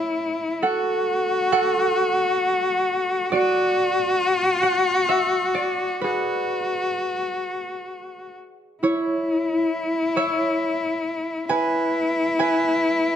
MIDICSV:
0, 0, Header, 1, 3, 480
1, 0, Start_track
1, 0, Tempo, 896861
1, 328, Time_signature, 3, 2, 24, 8
1, 2732, Tempo, 928793
1, 4652, Tempo, 886263
1, 7002, End_track
2, 0, Start_track
2, 0, Title_t, "Harp"
2, 0, Program_c, 0, 46
2, 0, Note_on_c, 0, 57, 36
2, 0, Note_on_c, 0, 64, 45
2, 0, Note_on_c, 0, 73, 59
2, 0, Note_on_c, 0, 76, 84
2, 132, Note_off_c, 0, 57, 0
2, 275, Note_off_c, 0, 64, 0
2, 334, Note_on_c, 0, 69, 60
2, 336, Note_on_c, 0, 78, 93
2, 549, Note_off_c, 0, 76, 0
2, 648, Note_off_c, 0, 73, 0
2, 812, Note_off_c, 0, 69, 0
2, 813, Note_off_c, 0, 78, 0
2, 814, Note_on_c, 0, 69, 70
2, 816, Note_on_c, 0, 78, 92
2, 1676, Note_off_c, 0, 78, 0
2, 1776, Note_on_c, 0, 74, 87
2, 1782, Note_on_c, 0, 66, 66
2, 1990, Note_off_c, 0, 69, 0
2, 2477, Note_on_c, 0, 78, 99
2, 2723, Note_on_c, 0, 76, 93
2, 2763, Note_off_c, 0, 74, 0
2, 2959, Note_on_c, 0, 74, 83
2, 3074, Note_off_c, 0, 66, 0
2, 3202, Note_on_c, 0, 71, 77
2, 3215, Note_on_c, 0, 68, 52
2, 3317, Note_off_c, 0, 78, 0
2, 3614, Note_off_c, 0, 76, 0
2, 3914, Note_off_c, 0, 74, 0
2, 4390, Note_off_c, 0, 71, 0
2, 4396, Note_off_c, 0, 68, 0
2, 4656, Note_on_c, 0, 64, 46
2, 4660, Note_on_c, 0, 73, 71
2, 5377, Note_off_c, 0, 73, 0
2, 5379, Note_on_c, 0, 73, 64
2, 5383, Note_on_c, 0, 76, 74
2, 6071, Note_off_c, 0, 64, 0
2, 6100, Note_on_c, 0, 80, 101
2, 6104, Note_on_c, 0, 71, 65
2, 6316, Note_off_c, 0, 76, 0
2, 6415, Note_off_c, 0, 73, 0
2, 6585, Note_off_c, 0, 80, 0
2, 6587, Note_on_c, 0, 80, 89
2, 6589, Note_off_c, 0, 71, 0
2, 6591, Note_on_c, 0, 71, 69
2, 7002, Note_off_c, 0, 71, 0
2, 7002, Note_off_c, 0, 80, 0
2, 7002, End_track
3, 0, Start_track
3, 0, Title_t, "Cello"
3, 0, Program_c, 1, 42
3, 0, Note_on_c, 1, 64, 87
3, 334, Note_on_c, 1, 66, 97
3, 342, Note_off_c, 1, 64, 0
3, 1772, Note_off_c, 1, 66, 0
3, 1775, Note_on_c, 1, 66, 116
3, 3191, Note_off_c, 1, 66, 0
3, 3213, Note_on_c, 1, 66, 85
3, 4395, Note_off_c, 1, 66, 0
3, 4657, Note_on_c, 1, 64, 74
3, 6078, Note_off_c, 1, 64, 0
3, 6100, Note_on_c, 1, 64, 89
3, 7002, Note_off_c, 1, 64, 0
3, 7002, End_track
0, 0, End_of_file